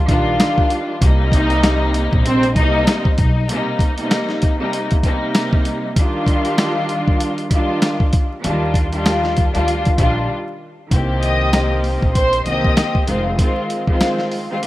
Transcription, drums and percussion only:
0.08 kick medium
0.08 closed hi-hat medium
0.40 snare loud
0.40 snare medium
0.40 closed hi-hat loud
0.58 kick medium
0.70 closed hi-hat medium
1.02 kick loud
1.02 closed hi-hat loud
1.32 kick medium
1.32 closed hi-hat medium
1.50 closed hi-hat medium
1.63 snare loud
1.63 snare medium
1.63 closed hi-hat medium
1.94 closed hi-hat medium
2.13 kick loud
2.26 closed hi-hat medium
2.43 closed hi-hat medium
2.56 kick medium
2.56 closed hi-hat medium
2.87 snare loud
2.87 closed hi-hat loud
3.05 kick loud
3.18 kick loud
3.18 closed hi-hat medium
3.49 closed hi-hat loud
3.79 kick medium
3.79 closed hi-hat medium
3.98 closed hi-hat medium
4.11 snare loud
4.11 snare medium
4.11 closed hi-hat medium
4.29 snare soft
4.42 kick loud
4.42 closed hi-hat medium
4.73 closed hi-hat medium
4.91 kick medium
4.91 closed hi-hat medium
5.03 kick medium
5.03 closed hi-hat medium
5.35 snare loud
5.35 snare medium
5.35 closed hi-hat loud
5.53 kick loud
5.65 closed hi-hat medium
5.96 kick loud
5.96 closed hi-hat loud
6.27 kick medium
6.27 closed hi-hat medium
6.45 closed hi-hat medium
6.58 snare loud
6.58 snare medium
6.58 closed hi-hat medium
6.89 closed hi-hat medium
7.08 kick loud
7.20 closed hi-hat medium
7.38 closed hi-hat medium
7.51 kick medium
7.51 closed hi-hat medium
7.82 snare loud
7.82 snare medium
7.82 closed hi-hat loud
8.00 kick loud
8.13 kick loud
8.13 closed hi-hat medium
8.44 closed hi-hat loud
8.74 kick medium
8.74 closed hi-hat medium
8.93 closed hi-hat medium
9.06 snare loud
9.06 snare medium
9.06 closed hi-hat medium
9.24 snare soft
9.37 kick loud
9.37 closed hi-hat medium
9.55 closed hi-hat medium
9.68 closed hi-hat medium
9.85 kick medium
9.85 closed hi-hat medium
9.98 kick medium
9.98 closed hi-hat medium
10.91 kick loud
10.91 closed hi-hat loud
11.23 closed hi-hat medium
11.53 snare loud
11.53 snare medium
11.53 closed hi-hat medium
11.84 open hi-hat medium
12.02 kick medium
12.15 kick medium
12.15 closed hi-hat medium
12.33 closed hi-hat medium
12.46 closed hi-hat medium
12.64 kick medium
12.77 snare loud
12.77 snare medium
12.77 closed hi-hat medium
12.95 kick medium
13.08 closed hi-hat medium
13.39 kick loud
13.39 closed hi-hat loud
13.70 closed hi-hat medium
13.87 kick medium
14.01 snare loud
14.01 snare medium
14.01 closed hi-hat medium
14.18 snare soft
14.31 open hi-hat soft
14.63 closed hi-hat medium

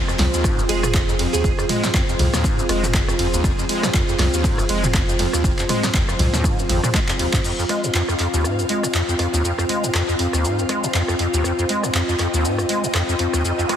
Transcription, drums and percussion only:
0.08 cross-stick medium
0.08 cabasa soft
0.19 snare medium
0.19 clap soft
0.19 open hi-hat medium
0.19 ride medium
0.34 cabasa medium
0.44 kick loud
0.44 cross-stick medium
0.44 ride medium
0.44 cabasa medium
0.59 cabasa soft
0.69 open hi-hat loud
0.69 ride medium
0.83 cross-stick medium
0.83 mid tom loud
0.83 cabasa medium
0.94 kick loud
0.94 clap loud
0.94 ride medium
0.94 cabasa medium
1.09 cabasa soft
1.19 open hi-hat medium
1.19 ride medium
1.34 cabasa medium
1.44 kick loud
1.44 ride medium
1.44 cabasa medium
1.59 cross-stick medium
1.59 cabasa soft
1.69 mid tom medium
1.69 open hi-hat loud
1.69 ride medium
1.84 snare medium
1.84 cabasa medium
1.94 kick loud
1.94 cross-stick medium
1.94 clap loud
1.94 ride medium
1.94 cabasa medium
2.09 cabasa soft
2.19 mid tom medium
2.19 open hi-hat medium
2.19 ride medium
2.34 cross-stick medium
2.34 snare medium
2.34 mid tom medium
2.34 cabasa medium
2.44 kick loud
2.44 ride medium
2.44 cabasa medium
2.59 cabasa soft
2.69 cross-stick medium
2.69 open hi-hat loud
2.69 ride medium
2.83 mid tom medium
2.83 cabasa medium
2.94 kick loud
2.94 clap loud
2.94 ride medium
2.94 cabasa medium
3.08 cross-stick medium
3.08 cabasa soft
3.19 open hi-hat medium
3.19 ride medium
3.34 cabasa medium
3.44 kick loud
3.44 cross-stick medium
3.44 ride medium
3.44 cabasa medium
3.59 cabasa soft
3.69 open hi-hat medium
3.69 ride medium
3.83 cross-stick medium
3.83 snare medium
3.83 cabasa medium
3.94 kick loud
3.94 clap loud
3.94 ride medium
3.94 cabasa medium
4.09 cabasa soft
4.19 cross-stick medium
4.19 snare medium
4.19 clap soft
4.19 open hi-hat medium
4.19 ride medium
4.34 cabasa medium
4.44 kick loud
4.44 ride medium
4.44 cabasa medium
4.58 cross-stick medium
4.58 cabasa soft
4.69 open hi-hat loud
4.69 ride medium
4.83 mid tom medium
4.83 cabasa medium
4.94 kick loud
4.94 cross-stick medium
4.94 clap loud
4.94 ride medium
4.94 cabasa medium
5.09 cabasa soft
5.19 snare soft
5.19 open hi-hat medium
5.19 ride medium
5.33 cross-stick medium
5.33 cabasa medium
5.44 kick loud
5.44 ride medium
5.44 cabasa medium
5.59 clap soft
5.59 cabasa soft
5.69 cross-stick medium
5.69 mid tom medium
5.69 open hi-hat loud
5.69 ride medium
5.83 snare medium
5.83 cabasa medium
5.94 kick loud
5.94 clap loud
5.94 ride medium
5.94 cabasa medium
6.09 cross-stick medium
6.09 cabasa soft
6.19 mid tom medium
6.19 open hi-hat medium
6.19 ride medium
6.34 snare medium
6.34 mid tom loud
6.34 cabasa medium
6.44 kick loud
6.44 cross-stick medium
6.44 ride medium
6.44 cabasa medium
6.59 cabasa soft
6.69 snare soft
6.69 open hi-hat loud
6.69 ride medium
6.84 cross-stick medium
6.84 mid tom loud
6.84 cabasa medium
6.94 kick loud
6.94 clap loud
6.94 ride medium
6.94 cabasa medium
7.09 clap medium
7.09 cabasa soft
7.19 open hi-hat medium
7.19 ride medium
7.33 kick medium
7.33 clap loud
7.33 cabasa medium
7.44 crash medium
7.44 cabasa medium
7.59 cabasa soft
7.69 cross-stick medium
7.69 open hi-hat medium
7.84 cabasa medium
7.95 clap loud
7.95 cabasa medium
8.08 cross-stick medium
8.08 cabasa soft
8.19 clap soft
8.19 open hi-hat medium
8.34 cabasa medium
8.44 cross-stick medium
8.44 cabasa medium
8.59 cabasa soft
8.69 open hi-hat loud
8.83 cross-stick medium
8.83 cabasa medium
8.95 clap loud
8.95 cabasa medium
9.09 cabasa soft
9.19 cross-stick soft
9.19 open hi-hat medium
9.34 cabasa medium
9.45 cabasa medium
9.58 cross-stick medium
9.58 cabasa soft
9.69 open hi-hat loud
9.84 cabasa medium
9.94 cross-stick medium
9.94 clap loud
9.94 cabasa medium
10.09 cabasa soft
10.19 open hi-hat medium
10.33 cross-stick medium
10.33 cabasa medium
10.45 cabasa medium
10.59 cabasa soft
10.69 cross-stick medium
10.69 open hi-hat loud
10.84 cabasa medium
10.95 clap loud
10.95 cabasa medium
11.08 cross-stick medium
11.08 cabasa soft
11.19 open hi-hat medium
11.34 cabasa medium
11.44 cross-stick medium
11.44 cabasa medium
11.59 cabasa soft
11.69 open hi-hat loud
11.83 cross-stick medium
11.83 cabasa medium
11.95 clap loud
11.95 cabasa medium
12.09 cabasa soft
12.19 cross-stick medium
12.19 clap soft
12.19 open hi-hat medium
12.34 cabasa medium
12.45 cabasa medium
12.58 cross-stick medium
12.58 cabasa soft
12.69 open hi-hat loud
12.84 cabasa medium
12.94 cross-stick medium
12.94 clap loud
12.94 cabasa medium
13.09 cabasa soft
13.19 open hi-hat medium
13.33 cross-stick medium
13.33 cabasa medium
13.45 cabasa medium
13.59 cabasa soft
13.69 cross-stick medium
13.69 open hi-hat medium

